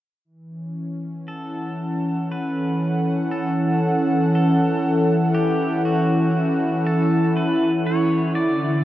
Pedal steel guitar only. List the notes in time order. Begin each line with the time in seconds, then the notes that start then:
1.28 A4
2.32 B4
3.31 A4
4.35 A4
5.35 G4
5.85 F#4
6.87 A4
7.37 B4
7.87 C#5
8.35 D5